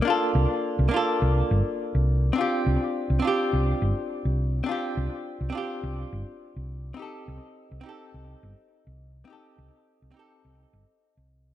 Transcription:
<<
  \new Staff \with { instrumentName = "Hollow-body jazz guitar" } { \time 4/4 \key g \minor \tempo 4 = 104 <bes d' f' a'>4. <bes d' f' a'>2~ <bes d' f' a'>8 | <c' d' f' g'>4. <c' d' f' g'>2~ <c' d' f' g'>8 | <c' d' f' g'>4. <c' d' f' g'>2~ <c' d' f' g'>8 | <c' ees' g' a'>4. <c' ees' g' a'>2~ <c' ees' g' a'>8 |
<c' ees' g' a'>4. <c' ees' g' a'>2~ <c' ees' g' a'>8 | }
  \new Staff \with { instrumentName = "Fingered electric bass" } { \clef bass \time 4/4 \key g \minor r8 c,16 r8 c,16 r8 c,16 r16 g,,16 r8 c,8 r16 | r8 c,16 r8 c,16 r8 c,16 r16 g,,16 r8 c,8 r16 | r8 c,16 r8 c,16 r8 c,16 r16 g,,16 r8 c,8 r16 | r8 c,16 r8 c,16 r8 c,16 r16 g,,16 r8 c,8 r16 |
r8 c,16 r8 c,16 r8 c,16 r16 g,,16 r8 c,8 r16 | }
>>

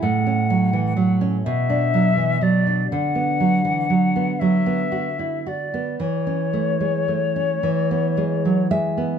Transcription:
<<
  \new Staff \with { instrumentName = "Flute" } { \time 6/8 \key b \dorian \tempo 4. = 40 fis''4 r8 e''4 d''8 | fis''4. e''4 d''8 | cis''2~ cis''8 r8 | }
  \new Staff \with { instrumentName = "Nylon-string guitar" } { \clef bass \time 6/8 \key b \dorian << { r2. | r2. | r2 r8 e''8 | } \\ { a,16 cis'16 fis16 e16 fis16 cis'16 b,16 d'16 fis16 e16 fis16 d'16 | d16 b16 fis16 e16 fis16 b16 fis16 b16 fis'16 e'16 fis'16 b16 | e16 cis'16 a16 gis16 a16 cis'16 e16 b16 gis16 fis16 gis16 b16 | } >> }
>>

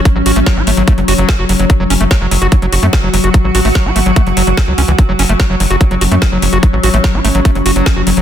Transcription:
<<
  \new Staff \with { instrumentName = "Ambient pad" } { \time 4/4 \key fis \minor \tempo 4 = 146 <fis cis'>1 | fis'1~ | fis'1 | cis'1~ |
cis'1 | }
  \new Staff \with { instrumentName = "Acid bass" } { \clef bass \time 4/4 \key fis \minor fis16 fis16 fis'16 a16 fis16 fis'16 a16 fis16 a16 fis16 fis'16 fis16 fis'16 fis'16 fis16 fis16 | fis16 fis16 cis'16 a16 fis16 fis16 fis16 fis'16 fis16 fis16 fis'16 a16 fis16 fis16 fis16 fis'16 | fis16 fis16 fis'16 a16 fis16 fis'16 a16 fis16 a16 fis16 fis16 fis16 fis16 fis16 cis'16 e16 | fis16 fis16 cis'16 a16 fis16 fis16 fis16 fis'16 fis16 fis16 fis'16 a16 fis16 fis16 fis16 fis'16 |
fis16 fis16 fis'16 a16 fis16 fis'16 a16 fis16 a16 fis16 fis'16 fis16 fis'16 fis'16 fis16 fis16 | }
  \new Staff \with { instrumentName = "Analog synth bass" } { \clef bass \time 4/4 \key fis \minor r16 a,,16 a,,16 a,,16 r16 gis,,16 gis,,16 gis,,16 r16 fis,,16 fis,,16 fis,,16 r16 fis,,16 fis,,16 fis,,16 | r16 fis,,16 fis,,16 fis,,16 r16 fis,,16 fis,,16 fis,,16 r16 fis,,16 fis,,16 fis,16 r16 fis,,16 fis,,16 fis,,16 | r16 a,,16 a,,16 a,,16 r16 gis,,16 gis,,16 gis,,16 r16 fis,,16 fis,,16 fis,,16 r16 cis,16 cis,16 cis,16 | r16 fis,,16 fis,,16 fis,,16 r16 fis,,16 fis,,16 fis,,16 r16 fis,,16 fis,,16 fis,16 r16 fis,,16 fis,,16 fis,,16 |
r16 a,,16 a,,16 a,,16 r16 gis,,16 gis,,16 gis,,16 r16 fis,,16 fis,,16 fis,,16 r16 fis,,16 fis,,16 fis,,16 | }
  \new DrumStaff \with { instrumentName = "Drums" } \drummode { \time 4/4 <hh bd>8 hho16 hh16 <hh bd sn>8 hho16 hh16 <hh bd>16 hh16 hho16 hh16 <hh bd sn>8 hho16 hh16 | <hh bd>8 hho16 hh16 <hh bd sn>8 hho16 hh16 <hh bd>16 hh16 hho16 hh16 <hh bd sn>8 hho16 hh16 | <hh bd>8 hho16 hho16 <hh bd sn>8 hho16 hh16 <hh bd>16 hh16 hho16 hh16 <hh bd sn>8 hho16 hh16 | <hh bd>8 hho16 hh16 <hh bd sn>8 hho16 hh16 <hh bd>16 hh16 hho16 hh16 <hh bd sn>8 hho16 hh16 |
<hh bd>8 hho16 hh16 <hh bd sn>8 hho16 hh16 <hh bd>16 hh16 hho16 hh16 <hh bd sn>8 hho16 hh16 | }
>>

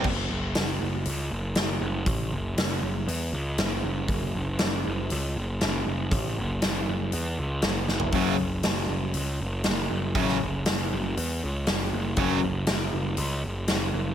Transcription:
<<
  \new Staff \with { instrumentName = "Distorted electric guitar" } { \clef bass \time 4/4 \key fis \minor \tempo 4 = 119 r1 | r1 | r1 | r1 |
<fis, cis fis>8 r2. r8 | <fis, cis fis>8 r2. r8 | <fis, cis fis>8 r2. r8 | }
  \new Staff \with { instrumentName = "Overdriven electric guitar" } { \clef bass \time 4/4 \key fis \minor r1 | r1 | r1 | r1 |
<fis, cis fis>8 r2. r8 | <fis, cis fis>8 r2. r8 | <fis, cis fis>8 r2. r8 | }
  \new Staff \with { instrumentName = "Picked electric bass" } { \clef bass \time 4/4 \key fis \minor fis,,8 fis,,8 fis,,8 fis,,8 cis,8 fis,,8 fis,,8 fis,,8 | a,,8 fis,,8 fis,,8 fis,,8 e,8 cis,8 fis,,8 fis,,8 | fis,,8 fis,,8 fis,,8 fis,,8 cis,8 fis,,8 fis,,8 fis,,8 | a,,8 fis,,8 fis,,8 fis,,8 e,8 cis,8 fis,,8 fis,,8 |
fis,,8 fis,,8 fis,,8 fis,,8 cis,8 fis,,8 fis,,8 fis,,8 | a,,8 fis,,8 fis,,8 fis,,8 e,8 cis,8 fis,,8 fis,,8 | fis,,8 fis,,8 fis,,8 fis,,8 cis,8 fis,,8 fis,,8 fis,,8 | }
  \new DrumStaff \with { instrumentName = "Drums" } \drummode { \time 4/4 <cymc bd>4 <hho sn>4 hho4 <hho sn>4 | <hho bd>4 <hho sn>4 hho4 <hho sn>4 | <hho bd>4 <hho sn>4 hho4 <hho sn>4 | <hho bd>4 <hho sn>4 hho4 <hho sn>8 sn16 tomfh16 |
<hho bd>4 <hho sn>4 hho4 <hho sn>4 | <hho bd>16 sn8. <hho sn>4 hho4 <hho sn>4 | <hho bd>4 <hho sn>4 hho4 <hho sn>4 | }
>>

